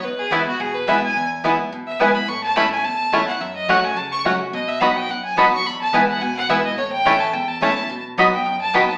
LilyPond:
<<
  \new Staff \with { instrumentName = "Fiddle" } { \time 4/4 \key e \major \tempo 4 = 214 b'8 gis'8 e'8 fis'8 gis'8 b'8 e''8 gis''8~ | gis''4 r4. e''8 gis''8 b''8 | cis'''8 a''8 b''8 gis''8 a''4. fis''8 | e''8 dis''8 fis''8 gis''8 a''8 cis'''8 r4 |
dis''8 e''8 fis''8 g''8 fis''8 gis''8 a''8 cis'''8 | b''8 a''8 gis''8 fis''8 gis''8 fis''8 e''8 dis''8 | cis''8 g''4 a''8 g''8 a''8 a''4~ | a''8 r4 g''4 a''8 g''8 a''8 | }
  \new Staff \with { instrumentName = "Mandolin" } { \time 4/4 \key e \major r4 <b e' b' gis''>8 r4. <b e' b' gis''>8 r8 | r4 <b e' b' gis''>8 r4. <b e' b' gis''>8 r8 | r4 <a e' cis'' a''>8 r4. <a e' cis'' a''>8 r8 | r4 <a fis' cis'' fis''>8 r4. <a fis' cis'' fis''>8 r8 |
r4 <b fis' dis'' b''>8 r4. <b fis' dis'' b''>8 r8 | r4 <b e' b' gis''>8 r4. <b e' b' gis''>8 r8 | r4 <a e' cis'' a''>8 r4. <a e' cis'' a''>8 r8 | r4 <b fis' dis'' b''>8 r4. <b fis' dis'' b''>8 r8 | }
  \new Staff \with { instrumentName = "Five-string banjo" } { \time 4/4 \key e \major r4 <b e'>8 r4. <b e'>8 r8 | r4 <b e'>8 r4. <b e'>8 r8 | r4 <a cis' e'>8 r4. <a cis' e'>8 r8 | r4 <a cis' fis'>8 r4. <a cis' fis'>8 r8 |
r4 <b dis' fis'>8 r4. <b dis' fis'>8 r8 | r4 <b e'>8 r4. <b e'>8 r8 | r4 <a cis' e'>8 r4. <a cis' e'>8 r8 | r4 <b dis' fis'>8 r4. <b dis' fis'>8 r8 | }
  \new Staff \with { instrumentName = "Steel-string acoustic guitar" } { \time 4/4 \key e \major << { r4 <e gis b e'>8 <b e'>8 r4 <e gis b e'>8 <b e'>8 | r4 <e gis b e'>8 <b e'>8 r4 <e gis b e'>8 <b e'>8 | r4 <e a cis' e'>8 <cis' e'>8 r4 <e a cis' e'>8 <cis' e'>8 | r4 <fis a cis' fis'>4 r4 <fis a cis' fis'>8 <cis' fis'>8 |
r4 <fis b dis' fis'>8 <dis' fis'>8 r4 <fis b dis' fis'>8 <dis' fis'>8 | r4 <e gis b e'>4 r4 <e gis b e'>8 <b e'>8 | r4 <e a cis' e'>4 r4 <e a cis' e'>8 <cis' e'>8 | r4 <fis b dis' fis'>8 <dis' fis'>8 r4 <fis b dis' fis'>8 <dis' fis'>8 | } \\ { e,2 b,2 | e,2 b,2 | a,2 e,2 | fis,2 cis2 |
b,2 fis,2 | e,2 b,2 | a,2 e,2 | b,2 fis,2 | } >> }
>>